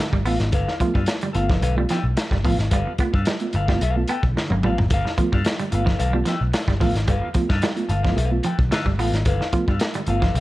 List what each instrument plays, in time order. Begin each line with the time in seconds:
0.00 reed electric piano G2 D3, muted clean electric guitar stroke
0.13 picked electric bass G1, clean electric guitar G3, kick
0.25 picked electric bass A1, reed electric piano A3 B3 F4, clean electric guitar B3 A4 B4 F5, open hi-hat
0.40 picked electric bass G#1, reed electric piano B3 F4, muted clean electric guitar stroke, snare, closed hi-hat
0.52 picked electric bass G1, reed electric piano G2 D3, clean electric guitar A4 B4 F5, kick, closed hi-hat
0.68 muted clean electric guitar stroke, snare
0.80 clean electric guitar F3, reed electric piano A3 B3 F4, muted picked electric bass stroke, muted clean electric guitar stroke, kick, closed hi-hat
0.94 picked electric bass G2, clean electric guitar G3 A4 B4 F5, reed electric piano B3 F4, kick
1.06 reed electric piano B3 F4, snare, closed hi-hat
1.21 reed electric piano G2 D3, clean electric guitar G3, muted clean electric guitar stroke, closed hi-hat
1.33 picked electric bass G1, reed electric piano A3 B3 F4, clean electric guitar A4 B4 F5, muted clean electric guitar stroke, closed hi-hat
1.48 clean electric guitar F3 A4 B4 F5, kick, snare
1.62 picked electric bass B1, reed electric piano G2 D3, clean electric guitar A4 B4 F5, muted clean electric guitar stroke, closed hi-hat
1.76 clean electric guitar G3, reed electric piano A3 B3 F4, muted clean electric guitar stroke
1.89 clean electric guitar F3 A4 B4 G5, reed electric piano B3 F4, snare, closed hi-hat
2.04 picked electric bass B1, muted clean electric guitar stroke
2.17 muted clean electric guitar stroke, snare, closed hi-hat
2.31 picked electric bass G1, clean electric guitar G3, kick, snare
2.44 picked electric bass A1, clean electric guitar F3 A4 B4 F5, reed electric piano A3 B3 F4, kick, open hi-hat
2.59 picked electric bass G#1, muted clean electric guitar stroke, snare, closed hi-hat
2.71 picked electric bass G1, reed electric piano G2 D3, clean electric guitar G3 A4 B4 F5, kick, closed hi-hat
2.86 reed electric piano B3 F4, muted clean electric guitar stroke
2.98 reed electric piano A3 B3 F4, clean electric guitar B3, muted clean electric guitar stroke, muted picked electric bass stroke, kick, closed hi-hat
3.13 picked electric bass G2, clean electric guitar A4 B4 F5, kick
3.25 clean electric guitar G3, snare, closed hi-hat
3.40 reed electric piano A3 B3 F4, muted clean electric guitar stroke, closed hi-hat
3.53 picked electric bass G1, reed electric piano G2 D3, clean electric guitar A4 B4 F5, muted clean electric guitar stroke, closed hi-hat
3.68 clean electric guitar G3 A4 B4 F5, reed electric piano A3 B3 F4, kick, snare
3.81 picked electric bass B1, clean electric guitar A4 B4 F5, closed hi-hat
3.96 reed electric piano A3 B3 F4, muted clean electric guitar stroke
4.08 clean electric guitar B3 A4 B4 G5, closed hi-hat
4.23 picked electric bass B1, reed electric piano G2 D3, muted clean electric guitar stroke, kick
4.36 reed electric piano G2 D3, muted clean electric guitar stroke, snare
4.50 picked electric bass G1, clean electric guitar A#3, high tom
4.63 picked electric bass A1, clean electric guitar G3 A4 B4 F5, reed electric piano A3 B3 F4, mid tom
4.78 picked electric bass G#1, reed electric piano B3 F4, muted clean electric guitar stroke, floor tom
4.90 picked electric bass G1, reed electric piano G2 D3, clean electric guitar A4 B4 F5, kick, closed hi-hat
5.05 muted clean electric guitar stroke, snare
5.17 clean electric guitar F3, reed electric piano A3 B3 F4, muted picked electric bass stroke, muted clean electric guitar stroke, kick, closed hi-hat
5.32 picked electric bass G2, clean electric guitar G3 A4 B4 F5, reed electric piano B3 F4, kick
5.45 reed electric piano B3 F4, muted clean electric guitar stroke, snare, closed hi-hat
5.59 reed electric piano G2 D3, clean electric guitar G3, muted clean electric guitar stroke, closed hi-hat
5.71 picked electric bass G1, reed electric piano A3 B3 F4, clean electric guitar A4 B4 F5, muted clean electric guitar stroke, closed hi-hat
5.86 clean electric guitar F3 A4 B4 F5, kick, snare
5.99 picked electric bass B1, reed electric piano G2 D3, clean electric guitar A4 B4 F5, muted clean electric guitar stroke, closed hi-hat
6.13 clean electric guitar G3, reed electric piano A3 B3 F4, muted clean electric guitar stroke
6.25 clean electric guitar F3 A4 B4 G5, reed electric piano B3 F4, snare, closed hi-hat
6.41 picked electric bass B1, muted clean electric guitar stroke
6.53 muted clean electric guitar stroke, snare, closed hi-hat
6.68 picked electric bass G1, clean electric guitar G3, kick, snare
6.80 picked electric bass A1, clean electric guitar F3 A4 B4 F5, reed electric piano A3 B3 F4, kick, open hi-hat
6.95 picked electric bass G#1, muted clean electric guitar stroke, snare, closed hi-hat
7.07 picked electric bass G1, reed electric piano G2 D3, clean electric guitar G3 A4 B4 F5, kick, closed hi-hat
7.22 reed electric piano B3 F4, muted clean electric guitar stroke
7.34 clean electric guitar F3, reed electric piano A3 B3 F4, muted picked electric bass stroke, muted clean electric guitar stroke, kick, closed hi-hat
7.49 picked electric bass G2, clean electric guitar A4 B4 F5, kick, snare
7.62 clean electric guitar G3, muted clean electric guitar stroke, snare, closed hi-hat
7.76 reed electric piano A3 B3 F4, muted clean electric guitar stroke, closed hi-hat
7.89 picked electric bass G1, reed electric piano G2 D3, clean electric guitar A4 B4 F5, muted clean electric guitar stroke, closed hi-hat
8.04 clean electric guitar F3 A4 B4 F5, reed electric piano A3 B3 F4, kick, snare
8.16 picked electric bass B1, clean electric guitar A4 B4 F5, closed hi-hat
8.31 reed electric piano A3 B3 F4, muted clean electric guitar stroke
8.43 clean electric guitar F3 A4 B4 G5, closed hi-hat
8.59 picked electric bass B1, reed electric piano G2 D3, muted clean electric guitar stroke, kick
8.71 reed electric piano G2 D3, clean electric guitar A4 B4 F5, muted clean electric guitar stroke, snare, closed hi-hat
8.86 picked electric bass G1, clean electric guitar G3, muted clean electric guitar stroke, kick
8.99 picked electric bass A1, reed electric piano A3 B3 F4, clean electric guitar B3 A4 B4 F5, open hi-hat
9.12 picked electric bass G#1, reed electric piano B3 F4, muted clean electric guitar stroke, snare, closed hi-hat
9.25 picked electric bass G1, reed electric piano G2 D3, clean electric guitar A4 B4 F5, kick, closed hi-hat
9.41 muted clean electric guitar stroke, snare
9.53 clean electric guitar F3, reed electric piano A3 B3 F4, muted picked electric bass stroke, muted clean electric guitar stroke, kick, closed hi-hat
9.67 picked electric bass G2, clean electric guitar G3 A4 B4 F5, reed electric piano B3 F4, kick
9.80 reed electric piano B3 F4, snare, closed hi-hat
9.94 reed electric piano G2 D3, clean electric guitar G3, muted clean electric guitar stroke, closed hi-hat
10.07 picked electric bass G1, reed electric piano A3 B3 F4, clean electric guitar A4 B4 F5, muted clean electric guitar stroke, closed hi-hat
10.22 clean electric guitar F3 A4 B4 F5, kick, snare
10.34 picked electric bass B1, reed electric piano G2 D3, clean electric guitar A4 B4, muted clean electric guitar stroke, closed hi-hat